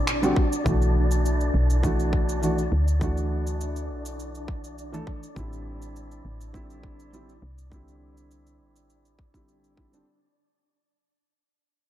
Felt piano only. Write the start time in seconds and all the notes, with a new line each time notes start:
Already playing: D3 G3 C4 E4
0.22 D3 G3 C4 F#4
0.64 E3 A3 D4
0.68 F#4
1.83 E3 A3 D4 F#4
2.42 E3 A3 D4 F#4
3.00 E3 A3 D4 F#4
4.92 E3 A3 D4 A4
5.35 D3 G3 C4
5.39 E4
6.53 D3 G3 C4 E4
7.12 D3 G3 C4 E4
7.70 D3 G3 C4 E4
9.33 D3 G3 C4 E4
9.77 D3 G3 C4 E4
9.92 D3 G3 C4 D4